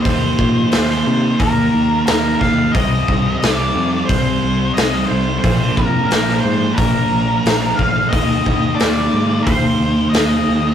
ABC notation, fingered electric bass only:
X:1
M:4/4
L:1/8
Q:1/4=89
K:Eb
V:1 name="Fingered electric bass" clef=bass
E,, B,, E,, C, E,, E,, E,, E,, | C,, C,, C,, F,, C,, C,, C,, C,, | B,,, F,, B,,, A,, B,,, B,,, B,,, B,,, | E,, E,, E,, A,, E,, E,, E,, E,, |]